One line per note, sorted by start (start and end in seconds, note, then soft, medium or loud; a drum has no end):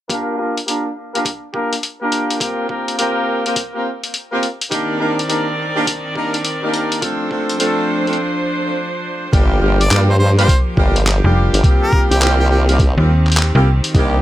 0.10 0.36 A#3 medium
0.10 0.36 D4 medium
0.10 0.36 F4 medium
0.10 0.36 G4 medium
0.10 0.36 A#4 medium
0.10 kick loud
0.10 closed hi-hat medium
0.38 0.59 A#3 medium
0.38 0.59 D4 medium
0.38 0.59 F4 medium
0.38 0.59 G4 medium
0.38 0.59 A#4 medium
0.57 closed hi-hat soft
0.67 0.87 A#3 medium
0.67 0.87 D4 medium
0.67 0.87 F4 medium
0.67 0.87 G4 medium
0.67 0.87 A#4 medium
0.67 closed hi-hat medium
1.14 1.28 A#3 medium
1.14 1.28 D4 medium
1.14 1.28 F4 medium
1.14 1.28 G4 medium
1.14 1.28 A#4 medium
1.14 closed hi-hat soft
1.25 kick medium
1.25 closed hi-hat medium
1.54 1.74 A#3 medium
1.54 1.74 D4 medium
1.54 1.74 F4 medium
1.54 1.74 G4 medium
1.54 1.74 A#4 loud
1.54 kick medium
1.73 closed hi-hat soft
1.83 closed hi-hat medium
2.01 2.38 A#3 medium
2.01 2.38 D4 medium
2.01 2.38 F4 medium
2.01 2.38 G4 medium
2.01 2.38 A#4 medium
2.12 closed hi-hat soft
2.30 closed hi-hat medium
2.40 2.67 A#3 medium
2.40 2.67 C4 medium
2.40 2.67 F4 medium
2.40 2.67 G4 medium
2.40 2.67 A#4 medium
2.40 kick loud
2.40 closed hi-hat medium
2.69 2.95 A#3 medium
2.69 2.95 C4 medium
2.69 2.95 F4 medium
2.69 2.95 G4 medium
2.69 2.95 A#4 medium
2.69 kick medium
2.88 closed hi-hat soft
2.98 3.41 A#3 medium
2.98 3.41 C4 medium
2.98 3.41 F4 medium
2.98 3.41 G4 medium
2.98 3.41 A#4 medium
2.98 closed hi-hat medium
3.45 3.59 A#3 medium
3.45 3.59 C4 medium
3.45 3.59 F4 medium
3.45 3.59 G4 medium
3.45 3.59 A#4 medium
3.45 closed hi-hat soft
3.56 kick medium
3.56 closed hi-hat medium
3.74 3.88 A#3 medium
3.74 3.88 C4 medium
3.74 3.88 F4 medium
3.74 3.88 G4 medium
3.74 3.88 A#4 medium
4.04 closed hi-hat soft
4.14 closed hi-hat medium
4.32 4.45 A#3 medium
4.32 4.45 C4 medium
4.32 4.45 F4 medium
4.32 4.45 G4 medium
4.32 4.45 A#4 medium
4.43 closed hi-hat soft
4.61 closed hi-hat medium
4.71 7.00 D#3 medium
4.71 4.98 A#3 medium
4.71 7.00 C4 medium
4.71 4.98 D4 medium
4.71 4.98 D#4 medium
4.71 4.98 G4 medium
4.71 4.98 A#4 medium
4.71 7.00 A#4 medium
4.71 7.00 D5 medium
4.71 kick loud
4.71 closed hi-hat medium
5.00 5.20 A#3 medium
5.00 5.20 D4 medium
5.00 5.20 D#4 medium
5.00 5.20 G4 medium
5.00 5.20 A#4 medium
5.19 closed hi-hat soft
5.29 5.49 A#3 medium
5.29 5.49 D4 medium
5.29 5.49 D#4 medium
5.29 5.49 G4 medium
5.29 5.49 A#4 medium
5.29 closed hi-hat medium
5.76 5.90 A#3 medium
5.76 5.90 D4 medium
5.76 5.90 D#4 medium
5.76 5.90 G4 medium
5.76 5.90 A#4 loud
5.87 kick loud
5.87 closed hi-hat medium
6.15 6.36 A#3 medium
6.15 6.36 D4 medium
6.15 6.36 D#4 medium
6.15 6.36 G4 medium
6.15 6.36 A#4 loud
6.15 kick medium
6.34 closed hi-hat soft
6.45 closed hi-hat medium
6.63 7.00 A#3 medium
6.63 7.00 D4 medium
6.63 7.00 D#4 medium
6.63 7.00 G4 medium
6.63 7.00 A#4 medium
6.74 closed hi-hat soft
6.92 closed hi-hat medium
7.02 9.31 F3 medium
7.02 7.28 A3 medium
7.02 7.29 C4 medium
7.02 7.28 D4 medium
7.02 9.31 D4 medium
7.02 7.28 F4 medium
7.02 7.28 A4 medium
7.02 9.31 C5 medium
7.02 kick loud
7.02 closed hi-hat medium
7.30 7.57 A3 medium
7.30 7.57 C4 medium
7.30 7.57 D4 medium
7.30 7.57 F4 medium
7.30 7.57 A4 medium
7.30 kick medium
7.49 closed hi-hat soft
7.59 8.02 A3 medium
7.59 8.02 C4 medium
7.59 8.02 D4 medium
7.59 8.03 F4 medium
7.59 8.02 A4 medium
7.59 closed hi-hat medium
8.07 8.18 A3 medium
8.07 8.17 C4 medium
8.07 8.18 D4 medium
8.07 8.18 F4 medium
8.07 8.18 A4 medium
8.07 closed hi-hat soft
8.13 closed hi-hat soft
9.33 9.60 G1 medium
9.33 11.62 F3 medium
9.33 9.59 G3 medium
9.33 9.59 A#3 medium
9.33 11.62 A#3 medium
9.33 9.59 D4 medium
9.33 9.59 F4 medium
9.33 9.59 G4 loud
9.33 13.91 G4 medium
9.33 kick loud
9.33 closed hi-hat medium
9.62 9.89 G1 medium
9.62 9.82 G3 medium
9.62 9.82 A#3 medium
9.62 9.82 D4 medium
9.62 9.82 F4 medium
9.62 9.82 G4 medium
9.80 10.00 D5 medium
9.80 closed hi-hat medium
9.91 10.47 G2 medium
9.91 10.11 G3 medium
9.91 10.11 A#3 medium
9.91 10.11 D4 medium
9.91 10.11 F4 medium
9.91 10.11 G4 medium
9.91 clap loud
9.91 closed hi-hat medium
10.10 10.16 C5 medium
10.19 10.31 C5 medium
10.38 10.51 G3 medium
10.38 10.51 A#3 medium
10.38 10.51 D4 medium
10.38 10.51 F4 medium
10.38 10.51 G4 loud
10.38 10.58 C5 medium
10.38 closed hi-hat medium
10.48 kick medium
10.48 closed hi-hat medium
10.77 11.21 G1 medium
10.77 10.97 G3 loud
10.77 10.97 A#3 medium
10.77 10.97 D4 medium
10.77 10.97 F4 medium
10.77 10.97 G4 loud
10.77 kick medium
10.96 closed hi-hat medium
11.07 clap loud
11.07 closed hi-hat medium
11.24 11.50 F1 medium
11.24 11.61 G3 medium
11.24 11.61 A#3 medium
11.24 11.61 D4 medium
11.24 11.61 F4 medium
11.24 11.61 G4 medium
11.53 11.62 G1 medium
11.53 closed hi-hat medium
11.64 13.92 D#3 medium
11.64 11.90 G3 medium
11.64 11.90 A#3 medium
11.64 11.90 C4 medium
11.64 13.92 C4 medium
11.64 11.90 F4 medium
11.64 11.90 G4 medium
11.64 kick loud
11.64 closed hi-hat medium
11.82 12.02 A#4 medium
11.93 12.19 G3 medium
11.93 12.19 A#3 medium
11.93 12.19 C4 medium
11.93 12.19 F4 medium
11.93 12.19 G4 medium
11.93 kick medium
12.11 12.95 C2 loud
12.11 12.18 G4 medium
12.11 closed hi-hat medium
12.22 12.64 G3 medium
12.22 12.64 A#3 medium
12.22 12.64 C4 medium
12.22 12.64 F4 medium
12.22 12.64 G4 medium
12.22 12.34 G4 medium
12.22 clap loud
12.22 closed hi-hat soft
12.40 12.47 G4 medium
12.50 12.62 G4 medium
12.69 12.82 G3 medium
12.69 12.82 A#3 medium
12.69 12.82 C4 medium
12.69 12.82 F4 medium
12.69 12.82 G4 medium
12.69 closed hi-hat medium
12.79 kick loud
12.79 closed hi-hat medium
12.98 13.52 D#2 medium
12.98 13.11 G3 medium
12.98 13.11 A#3 medium
12.98 13.11 C4 medium
12.98 13.11 F4 medium
12.98 13.11 G4 medium
13.27 clap soft
13.32 closed hi-hat medium
13.37 clap loud
13.37 closed hi-hat medium
13.55 13.81 C2 medium
13.55 13.69 G3 medium
13.55 13.69 A#3 medium
13.55 13.69 C4 medium
13.55 13.69 F4 medium
13.55 13.69 G4 medium
13.84 closed hi-hat medium
13.94 14.22 C2 medium
13.94 14.22 C3 medium
13.94 14.22 D#3 medium
13.94 14.21 G3 medium
13.94 14.22 A#3 medium
13.94 14.21 A#3 medium
13.94 14.21 D4 medium
13.94 14.21 D#4 medium
13.94 14.21 G4 loud
13.94 kick loud
13.94 closed hi-hat medium